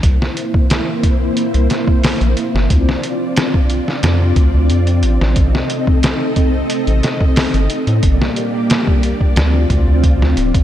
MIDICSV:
0, 0, Header, 1, 4, 480
1, 0, Start_track
1, 0, Tempo, 666667
1, 22, Time_signature, 4, 2, 24, 8
1, 7657, End_track
2, 0, Start_track
2, 0, Title_t, "String machine"
2, 0, Program_c, 0, 50
2, 21, Note_on_c, 0, 72, 88
2, 22, Note_on_c, 0, 64, 78
2, 24, Note_on_c, 0, 58, 79
2, 1923, Note_off_c, 0, 64, 0
2, 1923, Note_off_c, 0, 72, 0
2, 1924, Note_off_c, 0, 58, 0
2, 1947, Note_on_c, 0, 60, 86
2, 1948, Note_on_c, 0, 65, 74
2, 1949, Note_on_c, 0, 74, 88
2, 3846, Note_off_c, 0, 65, 0
2, 3846, Note_off_c, 0, 74, 0
2, 3863, Note_on_c, 0, 69, 75
2, 3867, Note_on_c, 0, 75, 94
2, 5756, Note_off_c, 0, 60, 0
2, 5764, Note_off_c, 0, 69, 0
2, 5765, Note_off_c, 0, 75, 0
2, 5782, Note_on_c, 0, 58, 80
2, 5783, Note_on_c, 0, 67, 71
2, 5786, Note_on_c, 0, 74, 91
2, 6733, Note_off_c, 0, 58, 0
2, 6733, Note_off_c, 0, 67, 0
2, 6742, Note_on_c, 0, 65, 77
2, 6744, Note_on_c, 0, 60, 82
2, 7657, Note_off_c, 0, 60, 0
2, 7657, Note_off_c, 0, 65, 0
2, 7657, Note_off_c, 0, 74, 0
2, 7657, End_track
3, 0, Start_track
3, 0, Title_t, "Analog synth bass"
3, 0, Program_c, 1, 38
3, 24, Note_on_c, 1, 36, 101
3, 134, Note_off_c, 1, 36, 0
3, 1111, Note_on_c, 1, 36, 85
3, 1210, Note_off_c, 1, 36, 0
3, 1591, Note_on_c, 1, 34, 91
3, 1690, Note_off_c, 1, 34, 0
3, 1832, Note_on_c, 1, 31, 80
3, 1930, Note_off_c, 1, 31, 0
3, 1946, Note_on_c, 1, 38, 94
3, 2055, Note_off_c, 1, 38, 0
3, 2904, Note_on_c, 1, 41, 85
3, 3116, Note_off_c, 1, 41, 0
3, 3141, Note_on_c, 1, 38, 98
3, 3253, Note_off_c, 1, 38, 0
3, 3270, Note_on_c, 1, 38, 105
3, 3381, Note_on_c, 1, 41, 91
3, 3391, Note_off_c, 1, 38, 0
3, 3620, Note_on_c, 1, 33, 95
3, 3631, Note_off_c, 1, 41, 0
3, 3733, Note_off_c, 1, 33, 0
3, 3750, Note_on_c, 1, 33, 97
3, 3849, Note_off_c, 1, 33, 0
3, 3862, Note_on_c, 1, 33, 105
3, 3974, Note_off_c, 1, 33, 0
3, 4949, Note_on_c, 1, 33, 83
3, 5049, Note_off_c, 1, 33, 0
3, 5427, Note_on_c, 1, 31, 93
3, 5528, Note_off_c, 1, 31, 0
3, 5668, Note_on_c, 1, 45, 83
3, 5768, Note_off_c, 1, 45, 0
3, 5781, Note_on_c, 1, 31, 98
3, 5893, Note_off_c, 1, 31, 0
3, 6741, Note_on_c, 1, 38, 86
3, 6954, Note_off_c, 1, 38, 0
3, 6983, Note_on_c, 1, 38, 98
3, 7094, Note_off_c, 1, 38, 0
3, 7109, Note_on_c, 1, 38, 107
3, 7343, Note_off_c, 1, 38, 0
3, 7348, Note_on_c, 1, 38, 100
3, 7448, Note_off_c, 1, 38, 0
3, 7463, Note_on_c, 1, 26, 83
3, 7574, Note_off_c, 1, 26, 0
3, 7592, Note_on_c, 1, 33, 102
3, 7657, Note_off_c, 1, 33, 0
3, 7657, End_track
4, 0, Start_track
4, 0, Title_t, "Drums"
4, 23, Note_on_c, 9, 36, 100
4, 23, Note_on_c, 9, 42, 85
4, 95, Note_off_c, 9, 36, 0
4, 95, Note_off_c, 9, 42, 0
4, 159, Note_on_c, 9, 38, 44
4, 231, Note_off_c, 9, 38, 0
4, 265, Note_on_c, 9, 42, 65
4, 337, Note_off_c, 9, 42, 0
4, 390, Note_on_c, 9, 36, 97
4, 462, Note_off_c, 9, 36, 0
4, 505, Note_on_c, 9, 42, 87
4, 512, Note_on_c, 9, 38, 109
4, 577, Note_off_c, 9, 42, 0
4, 584, Note_off_c, 9, 38, 0
4, 744, Note_on_c, 9, 36, 99
4, 745, Note_on_c, 9, 42, 72
4, 816, Note_off_c, 9, 36, 0
4, 817, Note_off_c, 9, 42, 0
4, 985, Note_on_c, 9, 42, 82
4, 1057, Note_off_c, 9, 42, 0
4, 1111, Note_on_c, 9, 42, 41
4, 1183, Note_off_c, 9, 42, 0
4, 1224, Note_on_c, 9, 42, 68
4, 1231, Note_on_c, 9, 38, 46
4, 1296, Note_off_c, 9, 42, 0
4, 1303, Note_off_c, 9, 38, 0
4, 1350, Note_on_c, 9, 36, 92
4, 1422, Note_off_c, 9, 36, 0
4, 1465, Note_on_c, 9, 46, 77
4, 1472, Note_on_c, 9, 38, 112
4, 1537, Note_off_c, 9, 46, 0
4, 1544, Note_off_c, 9, 38, 0
4, 1593, Note_on_c, 9, 42, 43
4, 1665, Note_off_c, 9, 42, 0
4, 1706, Note_on_c, 9, 42, 68
4, 1778, Note_off_c, 9, 42, 0
4, 1841, Note_on_c, 9, 38, 44
4, 1913, Note_off_c, 9, 38, 0
4, 1945, Note_on_c, 9, 36, 107
4, 1946, Note_on_c, 9, 42, 86
4, 2017, Note_off_c, 9, 36, 0
4, 2018, Note_off_c, 9, 42, 0
4, 2079, Note_on_c, 9, 38, 47
4, 2151, Note_off_c, 9, 38, 0
4, 2185, Note_on_c, 9, 42, 72
4, 2257, Note_off_c, 9, 42, 0
4, 2423, Note_on_c, 9, 42, 88
4, 2430, Note_on_c, 9, 38, 113
4, 2495, Note_off_c, 9, 42, 0
4, 2502, Note_off_c, 9, 38, 0
4, 2550, Note_on_c, 9, 36, 103
4, 2622, Note_off_c, 9, 36, 0
4, 2661, Note_on_c, 9, 42, 68
4, 2733, Note_off_c, 9, 42, 0
4, 2794, Note_on_c, 9, 38, 41
4, 2866, Note_off_c, 9, 38, 0
4, 2901, Note_on_c, 9, 42, 80
4, 2909, Note_on_c, 9, 38, 101
4, 2973, Note_off_c, 9, 42, 0
4, 2981, Note_off_c, 9, 38, 0
4, 3141, Note_on_c, 9, 42, 64
4, 3142, Note_on_c, 9, 36, 82
4, 3213, Note_off_c, 9, 42, 0
4, 3214, Note_off_c, 9, 36, 0
4, 3381, Note_on_c, 9, 42, 73
4, 3453, Note_off_c, 9, 42, 0
4, 3506, Note_on_c, 9, 42, 42
4, 3578, Note_off_c, 9, 42, 0
4, 3620, Note_on_c, 9, 42, 68
4, 3692, Note_off_c, 9, 42, 0
4, 3754, Note_on_c, 9, 38, 46
4, 3826, Note_off_c, 9, 38, 0
4, 3858, Note_on_c, 9, 42, 83
4, 3861, Note_on_c, 9, 36, 104
4, 3930, Note_off_c, 9, 42, 0
4, 3933, Note_off_c, 9, 36, 0
4, 3995, Note_on_c, 9, 38, 46
4, 4067, Note_off_c, 9, 38, 0
4, 4102, Note_on_c, 9, 42, 69
4, 4174, Note_off_c, 9, 42, 0
4, 4229, Note_on_c, 9, 36, 96
4, 4301, Note_off_c, 9, 36, 0
4, 4342, Note_on_c, 9, 42, 90
4, 4349, Note_on_c, 9, 38, 110
4, 4414, Note_off_c, 9, 42, 0
4, 4421, Note_off_c, 9, 38, 0
4, 4580, Note_on_c, 9, 42, 69
4, 4582, Note_on_c, 9, 36, 99
4, 4652, Note_off_c, 9, 42, 0
4, 4654, Note_off_c, 9, 36, 0
4, 4822, Note_on_c, 9, 42, 93
4, 4894, Note_off_c, 9, 42, 0
4, 4949, Note_on_c, 9, 42, 42
4, 5021, Note_off_c, 9, 42, 0
4, 5064, Note_on_c, 9, 42, 65
4, 5071, Note_on_c, 9, 38, 52
4, 5136, Note_off_c, 9, 42, 0
4, 5143, Note_off_c, 9, 38, 0
4, 5188, Note_on_c, 9, 36, 90
4, 5260, Note_off_c, 9, 36, 0
4, 5301, Note_on_c, 9, 46, 78
4, 5308, Note_on_c, 9, 38, 114
4, 5373, Note_off_c, 9, 46, 0
4, 5380, Note_off_c, 9, 38, 0
4, 5430, Note_on_c, 9, 42, 46
4, 5502, Note_off_c, 9, 42, 0
4, 5542, Note_on_c, 9, 42, 84
4, 5614, Note_off_c, 9, 42, 0
4, 5668, Note_on_c, 9, 42, 42
4, 5740, Note_off_c, 9, 42, 0
4, 5780, Note_on_c, 9, 42, 85
4, 5781, Note_on_c, 9, 36, 106
4, 5852, Note_off_c, 9, 42, 0
4, 5853, Note_off_c, 9, 36, 0
4, 5916, Note_on_c, 9, 38, 49
4, 5988, Note_off_c, 9, 38, 0
4, 6022, Note_on_c, 9, 42, 70
4, 6094, Note_off_c, 9, 42, 0
4, 6263, Note_on_c, 9, 42, 84
4, 6271, Note_on_c, 9, 38, 110
4, 6335, Note_off_c, 9, 42, 0
4, 6343, Note_off_c, 9, 38, 0
4, 6389, Note_on_c, 9, 36, 99
4, 6461, Note_off_c, 9, 36, 0
4, 6503, Note_on_c, 9, 42, 66
4, 6575, Note_off_c, 9, 42, 0
4, 6629, Note_on_c, 9, 36, 91
4, 6701, Note_off_c, 9, 36, 0
4, 6742, Note_on_c, 9, 42, 81
4, 6749, Note_on_c, 9, 38, 101
4, 6814, Note_off_c, 9, 42, 0
4, 6821, Note_off_c, 9, 38, 0
4, 6984, Note_on_c, 9, 36, 91
4, 6984, Note_on_c, 9, 42, 64
4, 7056, Note_off_c, 9, 36, 0
4, 7056, Note_off_c, 9, 42, 0
4, 7224, Note_on_c, 9, 36, 99
4, 7226, Note_on_c, 9, 42, 74
4, 7296, Note_off_c, 9, 36, 0
4, 7298, Note_off_c, 9, 42, 0
4, 7361, Note_on_c, 9, 38, 43
4, 7433, Note_off_c, 9, 38, 0
4, 7467, Note_on_c, 9, 42, 67
4, 7539, Note_off_c, 9, 42, 0
4, 7592, Note_on_c, 9, 36, 108
4, 7593, Note_on_c, 9, 42, 81
4, 7657, Note_off_c, 9, 36, 0
4, 7657, Note_off_c, 9, 42, 0
4, 7657, End_track
0, 0, End_of_file